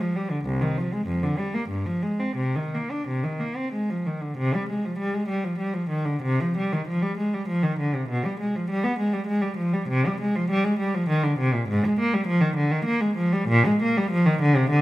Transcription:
0.01 0.16 F3 medium
0.16 0.31 G3 medium
0.31 0.46 D3 medium
0.45 0.61 C2 medium
0.62 0.77 D#3 medium
0.78 0.92 F3 medium
0.93 1.08 G#3 medium
1.07 1.22 F2 medium
1.23 1.38 D3 medium
1.38 1.54 G3 medium
1.54 1.70 A#3 medium
1.69 1.85 G2 medium
1.86 2.03 F3 medium
2.03 2.20 G#3 medium
2.20 2.38 C4 medium
2.36 2.55 C3 medium
2.56 2.73 D#3 medium
2.75 2.91 A#3 medium
2.91 3.08 D4 medium
3.08 3.24 C3 medium
3.23 3.40 D#3 medium
3.40 3.57 A#3 medium
3.57 3.73 C4 medium
3.73 3.89 G#3 medium
3.90 4.06 F3 medium
4.06 4.23 D#3 soft
4.22 4.38 D3 medium
4.38 4.53 C3 medium
4.55 4.70 G3 medium
4.69 4.84 G#3 medium
4.85 5.00 F3 medium
4.98 5.14 G3 medium
5.14 5.30 G#3 medium
5.29 5.44 G3 medium
5.44 5.60 F3 medium
5.59 5.75 G3 medium
5.74 5.91 F3 medium
5.90 6.07 D#3 medium
6.05 6.24 D3 medium
6.22 6.40 C3 medium
6.40 6.57 F3 medium
6.57 6.73 G3 medium
6.73 6.89 D#3 medium
6.88 7.03 F3 medium
7.02 7.18 G3 medium
7.18 7.33 G#3 medium
7.34 7.49 G3 medium
7.48 7.63 F3 medium
7.63 7.79 D#3 medium
7.79 7.94 D3 medium
7.95 8.10 C3 medium
8.09 8.24 B2 medium
8.25 8.40 G3 medium
8.40 8.54 G#3 medium
8.56 8.70 F3 medium
8.70 8.84 G3 medium
8.84 8.99 B3 medium
8.99 9.13 G#3 medium
9.13 9.28 G3 medium
9.27 9.42 G#3 medium
9.41 9.57 G3 medium
9.57 9.73 F3 medium
9.73 9.89 G3 medium
9.89 10.05 C3 medium
10.06 10.21 G3 medium
10.21 10.36 G#3 medium
10.36 10.51 F3 medium
10.50 10.65 G3 medium
10.64 10.79 G#3 medium
10.79 10.94 G3 medium
10.95 11.10 F3 medium
11.09 11.24 D#3 medium
11.24 11.39 D3 medium
11.39 11.54 C3 medium
11.54 11.69 A#2 medium
11.69 11.83 G#2 medium
11.85 11.99 G#3 medium
12.00 12.13 A#3 medium
12.14 12.28 G3 medium
12.27 12.41 F3 medium
12.41 12.56 D#3 medium
12.56 12.70 D3 medium
12.71 12.86 D#3 medium
12.85 13.00 A#3 medium
13.01 13.16 G#3 medium
13.16 13.32 F3 medium
13.33 13.49 G3 medium
13.48 13.64 A#2 loud
13.66 13.81 G#3 medium
13.82 13.97 A#3 medium
13.98 14.12 G3 medium
14.11 14.26 F3 loud
14.26 14.41 D#3 medium
14.42 14.56 D3 medium
14.56 14.71 C3 medium
14.70 14.82 D3 medium

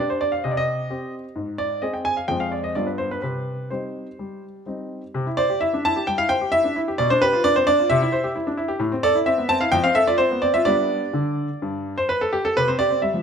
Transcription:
0.00 0.32 D4 medium
0.00 0.32 G4 medium
0.00 0.10 D5 medium
0.10 0.22 C5 medium
0.21 0.33 D5 medium
0.32 0.44 F5 medium
0.44 0.89 C3 medium
0.44 0.51 D#5 medium
0.51 0.58 D5 medium
0.57 1.13 D#5 loud
0.90 1.23 C4 soft
0.90 1.23 G4 medium
1.36 1.81 G#2 medium
1.58 1.82 D5 loud
1.82 2.15 C4 soft
1.82 2.16 G#4 medium
1.82 1.94 D#5 medium
1.94 2.05 G5 medium
2.05 2.16 G#5 loud
2.17 2.28 F5 medium
2.28 2.74 F2 medium
2.28 2.71 G#3 soft
2.28 2.71 C4 soft
2.28 2.72 G#4 soft
2.28 2.40 G5 loud
2.40 2.52 F5 medium
2.52 2.63 D5 medium
2.64 2.75 D#5 medium
2.75 3.22 G2 medium
2.75 3.19 G3 soft
2.75 3.20 B3 soft
2.75 3.20 F4 soft
2.75 2.87 D5 medium
2.87 2.99 B4 medium
2.98 3.10 C5 medium
3.11 3.21 B4 medium
3.22 3.69 C3 medium
3.22 3.70 B4 medium
3.70 4.06 G3 soft
3.70 4.06 C4 soft
3.70 4.06 D#4 soft
3.70 4.42 C5 medium
4.19 4.65 G3 soft
4.66 5.01 G3 soft
4.66 5.01 C4 soft
4.66 5.01 D#4 soft
5.14 5.26 C3 medium
5.27 5.38 E4 medium
5.37 5.50 C5 medium
5.37 5.58 D5 loud
5.50 5.62 G4 medium
5.61 5.73 E4 medium
5.61 5.84 E5 medium
5.74 5.84 D4 medium
5.85 5.97 E4 medium
5.85 6.07 A5 loud
5.96 6.08 G4 medium
6.07 6.19 G3 medium
6.07 6.18 G5 loud
6.18 6.30 E4 medium
6.18 6.29 F5 loud
6.29 6.42 C5 medium
6.29 6.52 G5 loud
6.41 6.53 G4 medium
6.52 6.65 E4 medium
6.52 6.79 E5 loud
6.64 6.75 D4 medium
6.76 6.87 E4 medium
6.88 6.99 G4 medium
6.98 7.09 B2 medium
6.98 7.09 D5 loud
7.10 7.22 D4 medium
7.10 7.21 C5 loud
7.22 7.33 G4 medium
7.22 7.44 B4 loud
7.33 7.44 F4 medium
7.44 7.56 D4 medium
7.44 7.55 D5 loud
7.56 7.67 C4 medium
7.56 7.67 C5 loud
7.67 7.79 D4 medium
7.67 7.87 D5 loud
7.79 7.90 F4 medium
7.90 8.01 C3 medium
7.90 8.31 E5 loud
8.02 8.13 E4 medium
8.12 8.24 C5 medium
8.24 8.36 G4 medium
8.35 8.47 E4 medium
8.47 8.58 D4 medium
8.57 8.69 E4 medium
8.68 8.80 G4 medium
8.79 8.91 A2 medium
8.92 9.04 C4 medium
9.03 9.16 A4 medium
9.03 9.17 D5 loud
9.15 9.27 E4 medium
9.26 9.38 C4 medium
9.26 9.47 E5 loud
9.38 9.49 B3 medium
9.49 9.61 C4 medium
9.49 9.61 A5 loud
9.61 9.73 E4 medium
9.61 9.72 F5 loud
9.72 9.84 F2 medium
9.72 9.84 G5 loud
9.84 9.96 C4 medium
9.84 9.95 F5 loud
9.95 10.08 A4 medium
9.95 10.07 E5 loud
10.07 10.20 F4 medium
10.07 10.19 D5 loud
10.18 10.31 C4 medium
10.18 10.42 C5 loud
10.31 10.43 B3 medium
10.42 10.55 C4 medium
10.42 10.54 D5 loud
10.54 10.66 F4 medium
10.54 10.66 E5 loud
10.65 10.99 G3 medium
10.65 11.04 B3 medium
10.65 11.04 D4 medium
10.65 11.97 D5 loud
11.13 11.47 D3 medium
11.62 11.95 G2 medium
11.98 12.09 C5 medium
12.09 12.21 B4 loud
12.21 12.33 A4 loud
12.33 12.44 G4 loud
12.45 12.56 A4 loud
12.57 12.68 C3 medium
12.57 12.68 B4 loud
12.68 12.80 C4 medium
12.68 12.79 C5 medium
12.79 12.92 G4 medium
12.79 13.00 D5 loud
12.91 13.03 C4 medium
13.02 13.15 G3 medium
13.02 13.22 E5 medium
13.14 13.22 F3 medium

